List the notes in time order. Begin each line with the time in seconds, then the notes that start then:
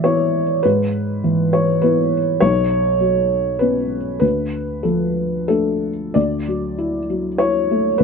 Already playing: A2 E3 D5 E5
0.04 B3 E4 C#5
0.63 G#2 B4
1.24 E3
1.53 C#5
1.82 B3 E4 B4
2.40 B1 C#5
3.00 F#3
3.59 B3 C#4 B4
4.20 D2 B4
4.83 F3 A4
5.48 A3 D4 A4
6.14 D2 D5
6.48 F#3
6.78 E4
7.10 F#3
7.38 E4 C#5
7.71 A3
7.98 D2 B4